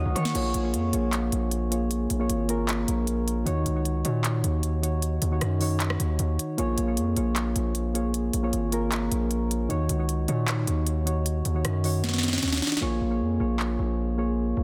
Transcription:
Already playing: string section C#3 F#3 A#3 D#4, synth keys D#3 D#4 F#4 C#5, harp C#5 D#5 F#5 C#6 D#6 F#6
0.06 808-style bass C#2
0.15 808-style bass D#3, harp C#5 C#6, closed hi-hat
0.25 snare
0.34 808-style bass A#1, synth keys A#3 F4 G#4 C#5, closed hi-hat, crash
0.54 808-style bass A#1, closed hi-hat
0.63 synth keys A#3 F4 G#4 C#5
0.74 808-style bass F2, closed hi-hat
0.93 808-style bass A#1, synth keys A#3 F4 G#4 C#5, closed hi-hat
1.13 clap, closed hi-hat
1.32 808-style bass A#1, closed hi-hat
1.51 closed hi-hat
1.71 synth keys A#3 F4 G#4 C#5, closed hi-hat
1.91 closed hi-hat
2.10 808-style bass A#1, closed hi-hat
2.19 synth keys A#3 F4 G#4 C#5
2.30 808-style bass G#1, closed hi-hat
2.48 synth keys A#3 F4 G#4 A#4, closed hi-hat
2.69 clap, closed hi-hat
2.88 808-style bass A#1, closed hi-hat
3.07 closed hi-hat
3.28 closed hi-hat
3.45 808-style bass D#2, synth keys D#3 D#4 F#4 C#5, closed hi-hat
3.66 808-style bass C#2, closed hi-hat
3.75 synth keys D#3 D#4 F#4 C#5
3.85 closed hi-hat
4.04 808-style bass A#2, synth keys D#3 D#4 F#4 C#5, closed hi-hat
4.24 clap, closed hi-hat
4.44 808-style bass D#2, closed hi-hat
4.63 closed hi-hat
4.82 synth keys D#3 D#4 F#4 C#5, closed hi-hat
5.02 closed hi-hat
5.22 808-style bass D#2, closed hi-hat
5.31 synth keys D#3 D#4 F#4 C#5
5.41 808-style bass F#2, cross-stick, closed hi-hat
5.60 synth keys D#3 D#4 F#4 C#5, open hi-hat
5.80 clap, closed hi-hat
5.90 cross-stick
6.00 808-style bass D#2, closed hi-hat
6.19 808-style bass D#2, closed hi-hat
6.39 closed hi-hat
6.58 808-style bass A#1, synth keys A#3 F4 G#4 C#5, closed hi-hat
6.78 808-style bass A#1, closed hi-hat
6.87 synth keys A#3 F4 G#4 C#5
6.97 808-style bass F2, closed hi-hat
7.16 808-style bass A#1, synth keys A#3 F4 G#4 C#5, closed hi-hat
7.36 clap, closed hi-hat
7.56 808-style bass A#1, closed hi-hat
7.75 closed hi-hat
7.94 synth keys A#3 F4 G#4 C#5, closed hi-hat
8.14 closed hi-hat
8.33 808-style bass A#1, closed hi-hat
8.43 synth keys A#3 F4 G#4 C#5
8.53 808-style bass G#1, closed hi-hat
8.72 synth keys A#3 F4 G#4 A#4, closed hi-hat
8.92 clap, closed hi-hat
9.12 808-style bass A#1, closed hi-hat
9.31 closed hi-hat
9.51 closed hi-hat
9.69 808-style bass D#2, synth keys D#3 D#4 F#4 C#5, closed hi-hat
9.89 808-style bass C#2, closed hi-hat
9.98 synth keys D#3 D#4 F#4 C#5
10.09 closed hi-hat
10.28 808-style bass A#2, synth keys D#3 D#4 F#4 C#5, closed hi-hat
10.48 clap, closed hi-hat
10.67 808-style bass D#2, closed hi-hat
10.87 closed hi-hat
11.05 synth keys D#3 D#4 F#4 C#5, closed hi-hat
11.26 closed hi-hat
11.45 808-style bass D#2, closed hi-hat
11.54 synth keys D#3 D#4 F#4 C#5
11.65 808-style bass F#2, cross-stick, closed hi-hat
11.84 synth keys D#3 D#4 F#4 C#5, open hi-hat
12.04 snare, closed hi-hat
12.09 snare
12.14 snare
12.18 snare
12.23 snare, closed hi-hat
12.28 snare
12.33 snare
12.38 snare
12.42 808-style bass D#2, snare, closed hi-hat
12.48 snare
12.53 snare
12.57 snare
12.62 snare, closed hi-hat
12.67 snare
12.72 snare
12.77 snare
12.81 808-style bass A#1, synth keys A#3 F4 G#4 C#5
13.01 808-style bass A#1
13.10 synth keys A#3 F4 G#4 C#5
13.21 808-style bass F2
13.39 808-style bass A#1, synth keys A#3 F4 G#4 C#5
13.60 clap
13.79 808-style bass A#1
14.17 synth keys A#3 F4 G#4 C#5
14.57 808-style bass A#1

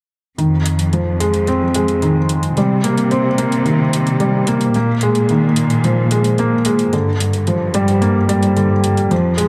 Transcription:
0.38 cello section F2, felt piano D#3, closed hi-hat
0.66 closed hi-hat
0.79 closed hi-hat
0.93 felt piano F3, closed hi-hat
1.20 felt piano G#3, closed hi-hat
1.34 closed hi-hat
1.47 felt piano C4, closed hi-hat
1.74 felt piano G#3, closed hi-hat
1.88 closed hi-hat
2.02 felt piano D#3, closed hi-hat
2.29 closed hi-hat
2.43 closed hi-hat
2.56 cello section C3, felt piano G3, closed hi-hat
2.84 felt piano A#3, closed hi-hat
2.98 closed hi-hat
3.11 felt piano C4, closed hi-hat
3.38 felt piano A#3, closed hi-hat
3.52 closed hi-hat
3.65 felt piano D#3, closed hi-hat
3.93 closed hi-hat
4.07 closed hi-hat
4.20 felt piano G3, closed hi-hat
4.47 felt piano A#3, closed hi-hat
4.61 closed hi-hat
4.74 cello section A#2, felt piano A#3, closed hi-hat
5.01 felt piano G#3, closed hi-hat
5.15 closed hi-hat
5.29 felt piano D#3, closed hi-hat
5.56 closed hi-hat
5.70 closed hi-hat
5.84 felt piano F3, closed hi-hat
6.11 felt piano G#3, closed hi-hat
6.24 closed hi-hat
6.38 felt piano A#3, closed hi-hat
6.65 felt piano G#3, closed hi-hat
6.79 closed hi-hat
6.92 cello section G2, felt piano D3, closed hi-hat
7.20 closed hi-hat
7.33 closed hi-hat
7.47 felt piano F3, closed hi-hat
7.74 felt piano G3, closed hi-hat
7.88 closed hi-hat
8.02 felt piano A#3, closed hi-hat
8.29 felt piano G3, closed hi-hat
8.43 closed hi-hat
8.56 felt piano D3, closed hi-hat
8.84 closed hi-hat
8.97 closed hi-hat
9.10 cello section F2, felt piano F3, closed hi-hat
9.37 felt piano G#3, closed hi-hat

